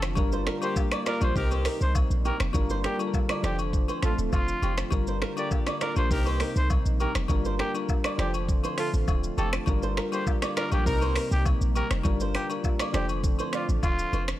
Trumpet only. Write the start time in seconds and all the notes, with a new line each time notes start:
0.63 C5
1.07 A#4
1.23 C5
1.37 A#4
1.82 C5
2.26 A#4
2.85 G4
3.45 G4
4.04 F4
4.34 F4
5.38 D5
5.82 A#4
5.97 C5
6.11 A#4
6.57 C5
7.01 A#4
7.60 G4
8.19 G4
8.79 F4
9.38 A4
10.13 C5
10.57 A#4
10.73 G4
10.87 A#4
11.32 G4
11.76 A#4
12.35 G4
12.95 G4
13.54 F4
13.84 F4